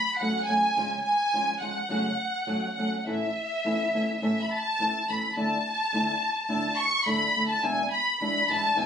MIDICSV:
0, 0, Header, 1, 3, 480
1, 0, Start_track
1, 0, Key_signature, 3, "minor"
1, 0, Tempo, 562324
1, 668, Time_signature, 2, 2, 24, 8
1, 1627, Tempo, 579151
1, 2587, Key_signature, 3, "major"
1, 3547, Tempo, 568720
1, 7460, End_track
2, 0, Start_track
2, 0, Title_t, "Violin section"
2, 0, Program_c, 0, 48
2, 0, Note_on_c, 0, 83, 78
2, 147, Note_off_c, 0, 83, 0
2, 160, Note_on_c, 0, 78, 78
2, 395, Note_on_c, 0, 80, 93
2, 398, Note_off_c, 0, 78, 0
2, 857, Note_off_c, 0, 80, 0
2, 883, Note_on_c, 0, 80, 94
2, 1340, Note_off_c, 0, 80, 0
2, 1378, Note_on_c, 0, 78, 75
2, 2318, Note_off_c, 0, 78, 0
2, 2328, Note_on_c, 0, 78, 68
2, 2504, Note_off_c, 0, 78, 0
2, 2519, Note_on_c, 0, 78, 38
2, 2574, Note_on_c, 0, 76, 66
2, 2584, Note_off_c, 0, 78, 0
2, 3515, Note_off_c, 0, 76, 0
2, 3525, Note_on_c, 0, 76, 74
2, 3704, Note_off_c, 0, 76, 0
2, 3717, Note_on_c, 0, 83, 59
2, 3784, Note_off_c, 0, 83, 0
2, 3799, Note_on_c, 0, 81, 91
2, 4274, Note_off_c, 0, 81, 0
2, 4275, Note_on_c, 0, 83, 71
2, 4508, Note_on_c, 0, 81, 82
2, 4509, Note_off_c, 0, 83, 0
2, 5427, Note_off_c, 0, 81, 0
2, 5456, Note_on_c, 0, 81, 70
2, 5684, Note_off_c, 0, 81, 0
2, 5685, Note_on_c, 0, 85, 80
2, 5921, Note_on_c, 0, 83, 86
2, 5934, Note_off_c, 0, 85, 0
2, 6298, Note_off_c, 0, 83, 0
2, 6300, Note_on_c, 0, 81, 66
2, 6416, Note_off_c, 0, 81, 0
2, 6433, Note_on_c, 0, 80, 73
2, 6669, Note_on_c, 0, 83, 72
2, 6676, Note_off_c, 0, 80, 0
2, 6893, Note_off_c, 0, 83, 0
2, 6908, Note_on_c, 0, 83, 73
2, 7134, Note_off_c, 0, 83, 0
2, 7155, Note_on_c, 0, 81, 81
2, 7389, Note_off_c, 0, 81, 0
2, 7391, Note_on_c, 0, 80, 73
2, 7460, Note_off_c, 0, 80, 0
2, 7460, End_track
3, 0, Start_track
3, 0, Title_t, "Nylon-string guitar"
3, 0, Program_c, 1, 24
3, 176, Note_on_c, 1, 54, 48
3, 187, Note_on_c, 1, 57, 55
3, 187, Note_on_c, 1, 61, 45
3, 192, Note_on_c, 1, 66, 54
3, 327, Note_off_c, 1, 54, 0
3, 332, Note_off_c, 1, 57, 0
3, 333, Note_off_c, 1, 61, 0
3, 335, Note_off_c, 1, 66, 0
3, 413, Note_on_c, 1, 54, 40
3, 420, Note_on_c, 1, 61, 37
3, 421, Note_on_c, 1, 57, 46
3, 426, Note_on_c, 1, 66, 46
3, 564, Note_off_c, 1, 54, 0
3, 568, Note_off_c, 1, 57, 0
3, 568, Note_off_c, 1, 61, 0
3, 571, Note_off_c, 1, 66, 0
3, 652, Note_on_c, 1, 49, 61
3, 655, Note_on_c, 1, 53, 52
3, 661, Note_on_c, 1, 65, 66
3, 662, Note_on_c, 1, 56, 66
3, 665, Note_on_c, 1, 61, 64
3, 805, Note_off_c, 1, 49, 0
3, 806, Note_off_c, 1, 53, 0
3, 809, Note_off_c, 1, 65, 0
3, 810, Note_off_c, 1, 56, 0
3, 811, Note_off_c, 1, 61, 0
3, 1138, Note_on_c, 1, 53, 49
3, 1143, Note_on_c, 1, 61, 57
3, 1146, Note_on_c, 1, 56, 54
3, 1149, Note_on_c, 1, 65, 57
3, 1287, Note_off_c, 1, 53, 0
3, 1289, Note_off_c, 1, 61, 0
3, 1291, Note_off_c, 1, 56, 0
3, 1292, Note_off_c, 1, 65, 0
3, 1372, Note_on_c, 1, 53, 39
3, 1378, Note_on_c, 1, 56, 45
3, 1385, Note_on_c, 1, 61, 47
3, 1390, Note_on_c, 1, 65, 45
3, 1523, Note_off_c, 1, 53, 0
3, 1526, Note_off_c, 1, 56, 0
3, 1529, Note_off_c, 1, 61, 0
3, 1532, Note_off_c, 1, 65, 0
3, 1613, Note_on_c, 1, 42, 55
3, 1618, Note_on_c, 1, 54, 60
3, 1622, Note_on_c, 1, 49, 67
3, 1623, Note_on_c, 1, 57, 59
3, 1626, Note_on_c, 1, 61, 64
3, 1627, Note_on_c, 1, 66, 66
3, 1762, Note_off_c, 1, 42, 0
3, 1764, Note_off_c, 1, 54, 0
3, 1766, Note_off_c, 1, 49, 0
3, 1767, Note_off_c, 1, 57, 0
3, 1768, Note_off_c, 1, 61, 0
3, 1769, Note_off_c, 1, 66, 0
3, 2093, Note_on_c, 1, 54, 60
3, 2093, Note_on_c, 1, 57, 53
3, 2100, Note_on_c, 1, 66, 58
3, 2101, Note_on_c, 1, 61, 44
3, 2244, Note_off_c, 1, 54, 0
3, 2244, Note_off_c, 1, 57, 0
3, 2247, Note_off_c, 1, 66, 0
3, 2248, Note_off_c, 1, 61, 0
3, 2350, Note_on_c, 1, 54, 46
3, 2356, Note_on_c, 1, 57, 49
3, 2361, Note_on_c, 1, 61, 48
3, 2365, Note_on_c, 1, 66, 39
3, 2492, Note_off_c, 1, 54, 0
3, 2495, Note_off_c, 1, 57, 0
3, 2498, Note_off_c, 1, 61, 0
3, 2500, Note_off_c, 1, 66, 0
3, 2582, Note_on_c, 1, 45, 48
3, 2588, Note_on_c, 1, 61, 43
3, 2589, Note_on_c, 1, 52, 46
3, 2594, Note_on_c, 1, 64, 53
3, 2596, Note_on_c, 1, 57, 56
3, 2731, Note_off_c, 1, 45, 0
3, 2734, Note_off_c, 1, 61, 0
3, 2735, Note_off_c, 1, 52, 0
3, 2737, Note_off_c, 1, 64, 0
3, 2738, Note_off_c, 1, 57, 0
3, 3068, Note_on_c, 1, 57, 45
3, 3071, Note_on_c, 1, 52, 39
3, 3078, Note_on_c, 1, 61, 38
3, 3081, Note_on_c, 1, 64, 44
3, 3213, Note_off_c, 1, 57, 0
3, 3215, Note_off_c, 1, 52, 0
3, 3218, Note_off_c, 1, 61, 0
3, 3220, Note_off_c, 1, 64, 0
3, 3309, Note_on_c, 1, 52, 42
3, 3314, Note_on_c, 1, 57, 39
3, 3319, Note_on_c, 1, 61, 37
3, 3319, Note_on_c, 1, 64, 39
3, 3451, Note_off_c, 1, 52, 0
3, 3454, Note_off_c, 1, 57, 0
3, 3456, Note_off_c, 1, 61, 0
3, 3456, Note_off_c, 1, 64, 0
3, 3545, Note_on_c, 1, 45, 51
3, 3546, Note_on_c, 1, 52, 52
3, 3548, Note_on_c, 1, 61, 53
3, 3551, Note_on_c, 1, 64, 50
3, 3553, Note_on_c, 1, 57, 53
3, 3692, Note_off_c, 1, 45, 0
3, 3692, Note_off_c, 1, 52, 0
3, 3693, Note_off_c, 1, 61, 0
3, 3695, Note_off_c, 1, 64, 0
3, 3696, Note_off_c, 1, 57, 0
3, 4025, Note_on_c, 1, 52, 43
3, 4031, Note_on_c, 1, 57, 38
3, 4040, Note_on_c, 1, 61, 45
3, 4042, Note_on_c, 1, 64, 42
3, 4171, Note_off_c, 1, 52, 0
3, 4174, Note_off_c, 1, 57, 0
3, 4179, Note_off_c, 1, 61, 0
3, 4180, Note_off_c, 1, 64, 0
3, 4279, Note_on_c, 1, 57, 38
3, 4280, Note_on_c, 1, 52, 37
3, 4286, Note_on_c, 1, 61, 35
3, 4288, Note_on_c, 1, 64, 40
3, 4416, Note_off_c, 1, 57, 0
3, 4417, Note_off_c, 1, 52, 0
3, 4420, Note_off_c, 1, 61, 0
3, 4421, Note_off_c, 1, 64, 0
3, 4509, Note_on_c, 1, 50, 44
3, 4512, Note_on_c, 1, 57, 59
3, 4514, Note_on_c, 1, 62, 55
3, 4516, Note_on_c, 1, 64, 59
3, 4652, Note_off_c, 1, 50, 0
3, 4653, Note_off_c, 1, 57, 0
3, 4654, Note_off_c, 1, 62, 0
3, 4655, Note_off_c, 1, 64, 0
3, 4985, Note_on_c, 1, 50, 41
3, 4989, Note_on_c, 1, 57, 46
3, 4997, Note_on_c, 1, 62, 49
3, 5001, Note_on_c, 1, 64, 56
3, 5127, Note_off_c, 1, 50, 0
3, 5130, Note_off_c, 1, 57, 0
3, 5134, Note_off_c, 1, 62, 0
3, 5136, Note_off_c, 1, 64, 0
3, 5456, Note_on_c, 1, 57, 50
3, 5457, Note_on_c, 1, 50, 54
3, 5462, Note_on_c, 1, 62, 59
3, 5465, Note_on_c, 1, 64, 64
3, 5604, Note_off_c, 1, 50, 0
3, 5604, Note_off_c, 1, 57, 0
3, 5607, Note_off_c, 1, 62, 0
3, 5608, Note_off_c, 1, 64, 0
3, 5941, Note_on_c, 1, 50, 44
3, 5941, Note_on_c, 1, 57, 48
3, 5949, Note_on_c, 1, 64, 43
3, 5950, Note_on_c, 1, 62, 45
3, 6089, Note_off_c, 1, 50, 0
3, 6089, Note_off_c, 1, 57, 0
3, 6093, Note_off_c, 1, 64, 0
3, 6094, Note_off_c, 1, 62, 0
3, 6191, Note_on_c, 1, 50, 33
3, 6193, Note_on_c, 1, 57, 37
3, 6199, Note_on_c, 1, 62, 41
3, 6211, Note_on_c, 1, 64, 39
3, 6335, Note_off_c, 1, 50, 0
3, 6336, Note_off_c, 1, 57, 0
3, 6338, Note_off_c, 1, 62, 0
3, 6345, Note_off_c, 1, 64, 0
3, 6423, Note_on_c, 1, 40, 60
3, 6425, Note_on_c, 1, 47, 51
3, 6425, Note_on_c, 1, 62, 50
3, 6428, Note_on_c, 1, 56, 49
3, 6428, Note_on_c, 1, 64, 57
3, 6430, Note_on_c, 1, 52, 54
3, 6573, Note_off_c, 1, 40, 0
3, 6574, Note_off_c, 1, 47, 0
3, 6574, Note_off_c, 1, 62, 0
3, 6576, Note_off_c, 1, 56, 0
3, 6576, Note_off_c, 1, 64, 0
3, 6577, Note_off_c, 1, 52, 0
3, 6909, Note_on_c, 1, 52, 38
3, 6915, Note_on_c, 1, 56, 41
3, 6917, Note_on_c, 1, 62, 51
3, 6921, Note_on_c, 1, 64, 46
3, 7056, Note_off_c, 1, 52, 0
3, 7059, Note_off_c, 1, 56, 0
3, 7060, Note_off_c, 1, 62, 0
3, 7062, Note_off_c, 1, 64, 0
3, 7146, Note_on_c, 1, 52, 38
3, 7152, Note_on_c, 1, 62, 42
3, 7154, Note_on_c, 1, 56, 41
3, 7162, Note_on_c, 1, 64, 38
3, 7291, Note_off_c, 1, 52, 0
3, 7294, Note_off_c, 1, 62, 0
3, 7295, Note_off_c, 1, 56, 0
3, 7299, Note_off_c, 1, 64, 0
3, 7372, Note_on_c, 1, 40, 48
3, 7375, Note_on_c, 1, 52, 57
3, 7376, Note_on_c, 1, 47, 59
3, 7380, Note_on_c, 1, 56, 58
3, 7382, Note_on_c, 1, 62, 58
3, 7385, Note_on_c, 1, 64, 60
3, 7460, Note_off_c, 1, 40, 0
3, 7460, Note_off_c, 1, 47, 0
3, 7460, Note_off_c, 1, 52, 0
3, 7460, Note_off_c, 1, 56, 0
3, 7460, Note_off_c, 1, 62, 0
3, 7460, Note_off_c, 1, 64, 0
3, 7460, End_track
0, 0, End_of_file